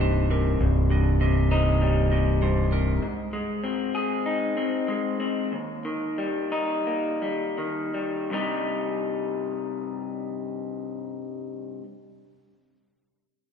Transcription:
0, 0, Header, 1, 4, 480
1, 0, Start_track
1, 0, Key_signature, -3, "minor"
1, 0, Tempo, 607287
1, 478, Time_signature, 4, 2, 24, 8
1, 3360, Tempo, 643087
1, 4800, Tempo, 696864
1, 5760, Tempo, 744417
1, 6240, Tempo, 762389
1, 9517, End_track
2, 0, Start_track
2, 0, Title_t, "Clean electric guitar"
2, 0, Program_c, 0, 27
2, 0, Note_on_c, 0, 75, 50
2, 7, Note_on_c, 0, 72, 54
2, 241, Note_off_c, 0, 72, 0
2, 244, Note_on_c, 0, 70, 50
2, 480, Note_off_c, 0, 70, 0
2, 721, Note_off_c, 0, 75, 0
2, 721, Note_on_c, 0, 75, 50
2, 947, Note_off_c, 0, 75, 0
2, 956, Note_on_c, 0, 75, 57
2, 1192, Note_off_c, 0, 75, 0
2, 1195, Note_on_c, 0, 72, 53
2, 1669, Note_off_c, 0, 72, 0
2, 1672, Note_on_c, 0, 75, 48
2, 1909, Note_off_c, 0, 75, 0
2, 1913, Note_on_c, 0, 72, 48
2, 2153, Note_off_c, 0, 72, 0
2, 2155, Note_on_c, 0, 70, 50
2, 2394, Note_off_c, 0, 70, 0
2, 9517, End_track
3, 0, Start_track
3, 0, Title_t, "Clean electric guitar"
3, 0, Program_c, 1, 27
3, 0, Note_on_c, 1, 48, 44
3, 0, Note_on_c, 1, 55, 45
3, 0, Note_on_c, 1, 63, 49
3, 2, Note_on_c, 1, 43, 48
3, 232, Note_off_c, 1, 48, 0
3, 242, Note_on_c, 1, 48, 45
3, 480, Note_on_c, 1, 36, 48
3, 706, Note_off_c, 1, 43, 0
3, 715, Note_on_c, 1, 43, 44
3, 718, Note_off_c, 1, 55, 0
3, 947, Note_off_c, 1, 48, 0
3, 956, Note_on_c, 1, 48, 46
3, 1194, Note_off_c, 1, 63, 0
3, 1197, Note_on_c, 1, 63, 46
3, 1436, Note_on_c, 1, 55, 44
3, 1665, Note_off_c, 1, 48, 0
3, 1675, Note_off_c, 1, 36, 0
3, 1675, Note_on_c, 1, 48, 43
3, 1903, Note_off_c, 1, 43, 0
3, 1912, Note_on_c, 1, 43, 48
3, 2142, Note_off_c, 1, 48, 0
3, 2152, Note_on_c, 1, 48, 41
3, 2391, Note_on_c, 1, 44, 50
3, 2392, Note_off_c, 1, 43, 0
3, 2392, Note_off_c, 1, 48, 0
3, 2394, Note_off_c, 1, 55, 0
3, 2633, Note_on_c, 1, 56, 41
3, 2874, Note_on_c, 1, 60, 44
3, 3117, Note_off_c, 1, 63, 0
3, 3120, Note_on_c, 1, 68, 45
3, 3366, Note_on_c, 1, 63, 40
3, 3587, Note_off_c, 1, 60, 0
3, 3592, Note_off_c, 1, 44, 0
3, 3596, Note_on_c, 1, 60, 39
3, 3823, Note_off_c, 1, 56, 0
3, 3832, Note_on_c, 1, 56, 42
3, 4058, Note_off_c, 1, 60, 0
3, 4067, Note_on_c, 1, 60, 39
3, 4307, Note_on_c, 1, 39, 43
3, 4308, Note_off_c, 1, 60, 0
3, 4309, Note_off_c, 1, 56, 0
3, 4309, Note_off_c, 1, 68, 0
3, 4553, Note_on_c, 1, 51, 39
3, 4801, Note_on_c, 1, 55, 40
3, 5033, Note_off_c, 1, 63, 0
3, 5033, Note_on_c, 1, 63, 41
3, 5274, Note_on_c, 1, 58, 42
3, 5507, Note_off_c, 1, 55, 0
3, 5513, Note_off_c, 1, 39, 0
3, 5515, Note_on_c, 1, 55, 37
3, 5756, Note_off_c, 1, 51, 0
3, 5764, Note_on_c, 1, 51, 40
3, 5990, Note_off_c, 1, 55, 0
3, 5998, Note_on_c, 1, 55, 35
3, 6229, Note_on_c, 1, 36, 51
3, 6239, Note_on_c, 1, 43, 53
3, 6240, Note_off_c, 1, 55, 0
3, 6240, Note_off_c, 1, 63, 0
3, 6241, Note_off_c, 1, 58, 0
3, 6242, Note_off_c, 1, 51, 0
3, 6245, Note_on_c, 1, 48, 52
3, 6249, Note_on_c, 1, 55, 58
3, 6255, Note_on_c, 1, 63, 53
3, 8433, Note_off_c, 1, 36, 0
3, 8443, Note_off_c, 1, 43, 0
3, 8448, Note_off_c, 1, 48, 0
3, 8452, Note_off_c, 1, 55, 0
3, 8458, Note_off_c, 1, 63, 0
3, 9517, End_track
4, 0, Start_track
4, 0, Title_t, "Fingered electric bass"
4, 0, Program_c, 2, 33
4, 0, Note_on_c, 2, 24, 55
4, 447, Note_off_c, 2, 24, 0
4, 479, Note_on_c, 2, 24, 51
4, 2362, Note_off_c, 2, 24, 0
4, 9517, End_track
0, 0, End_of_file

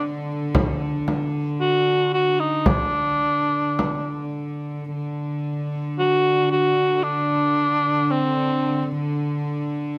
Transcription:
0, 0, Header, 1, 4, 480
1, 0, Start_track
1, 0, Key_signature, 2, "major"
1, 0, Tempo, 1054482
1, 249, Time_signature, 4, 2, 24, 8
1, 1209, Tempo, 1134216
1, 2169, Tempo, 1077199
1, 2649, Tempo, 1043478
1, 4479, End_track
2, 0, Start_track
2, 0, Title_t, "Cor anglais"
2, 0, Program_c, 0, 69
2, 731, Note_on_c, 0, 66, 80
2, 952, Note_off_c, 0, 66, 0
2, 974, Note_on_c, 0, 66, 79
2, 1090, Note_on_c, 0, 63, 70
2, 1097, Note_off_c, 0, 66, 0
2, 1215, Note_on_c, 0, 62, 78
2, 1221, Note_off_c, 0, 63, 0
2, 1935, Note_off_c, 0, 62, 0
2, 2643, Note_on_c, 0, 66, 85
2, 2872, Note_off_c, 0, 66, 0
2, 2885, Note_on_c, 0, 66, 73
2, 3124, Note_on_c, 0, 62, 82
2, 3131, Note_off_c, 0, 66, 0
2, 3619, Note_on_c, 0, 60, 76
2, 3626, Note_off_c, 0, 62, 0
2, 3979, Note_off_c, 0, 60, 0
2, 4479, End_track
3, 0, Start_track
3, 0, Title_t, "String section"
3, 0, Program_c, 1, 48
3, 0, Note_on_c, 1, 50, 45
3, 2161, Note_off_c, 1, 50, 0
3, 2167, Note_on_c, 1, 50, 49
3, 4479, Note_off_c, 1, 50, 0
3, 4479, End_track
4, 0, Start_track
4, 0, Title_t, "Frame drum"
4, 249, Note_on_c, 9, 64, 65
4, 294, Note_off_c, 9, 64, 0
4, 491, Note_on_c, 9, 64, 40
4, 536, Note_off_c, 9, 64, 0
4, 1210, Note_on_c, 9, 64, 60
4, 1252, Note_off_c, 9, 64, 0
4, 1689, Note_on_c, 9, 64, 43
4, 1731, Note_off_c, 9, 64, 0
4, 4479, End_track
0, 0, End_of_file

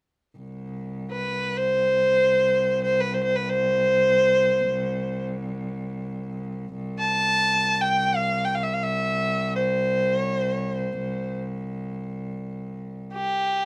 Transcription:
0, 0, Header, 1, 3, 480
1, 0, Start_track
1, 0, Tempo, 500000
1, 13105, End_track
2, 0, Start_track
2, 0, Title_t, "Kamancheh"
2, 0, Program_c, 0, 110
2, 1071, Note_on_c, 0, 71, 68
2, 1508, Note_on_c, 0, 72, 81
2, 1522, Note_off_c, 0, 71, 0
2, 2719, Note_off_c, 0, 72, 0
2, 2725, Note_on_c, 0, 72, 74
2, 2881, Note_on_c, 0, 71, 70
2, 2896, Note_off_c, 0, 72, 0
2, 3009, Note_on_c, 0, 72, 63
2, 3024, Note_off_c, 0, 71, 0
2, 3103, Note_off_c, 0, 72, 0
2, 3108, Note_on_c, 0, 72, 68
2, 3223, Note_on_c, 0, 71, 65
2, 3238, Note_off_c, 0, 72, 0
2, 3354, Note_on_c, 0, 72, 83
2, 3368, Note_off_c, 0, 71, 0
2, 5028, Note_off_c, 0, 72, 0
2, 6711, Note_on_c, 0, 81, 97
2, 7499, Note_on_c, 0, 79, 84
2, 7514, Note_off_c, 0, 81, 0
2, 7834, Note_on_c, 0, 77, 76
2, 7848, Note_off_c, 0, 79, 0
2, 8110, Note_on_c, 0, 79, 62
2, 8125, Note_off_c, 0, 77, 0
2, 8204, Note_on_c, 0, 77, 63
2, 8219, Note_off_c, 0, 79, 0
2, 8288, Note_on_c, 0, 76, 57
2, 8303, Note_off_c, 0, 77, 0
2, 8386, Note_on_c, 0, 77, 66
2, 8401, Note_off_c, 0, 76, 0
2, 8475, Note_on_c, 0, 76, 75
2, 8490, Note_off_c, 0, 77, 0
2, 9169, Note_off_c, 0, 76, 0
2, 9174, Note_on_c, 0, 72, 68
2, 9779, Note_off_c, 0, 72, 0
2, 9779, Note_on_c, 0, 73, 68
2, 9951, Note_off_c, 0, 73, 0
2, 9951, Note_on_c, 0, 72, 68
2, 10124, Note_off_c, 0, 72, 0
2, 10124, Note_on_c, 0, 73, 68
2, 10287, Note_off_c, 0, 73, 0
2, 10287, Note_on_c, 0, 72, 68
2, 10889, Note_off_c, 0, 72, 0
2, 12607, Note_on_c, 0, 67, 72
2, 13105, Note_off_c, 0, 67, 0
2, 13105, End_track
3, 0, Start_track
3, 0, Title_t, "Cello"
3, 0, Program_c, 1, 42
3, 363, Note_on_c, 1, 36, 52
3, 6472, Note_off_c, 1, 36, 0
3, 6478, Note_on_c, 1, 36, 53
3, 12669, Note_off_c, 1, 36, 0
3, 13105, End_track
0, 0, End_of_file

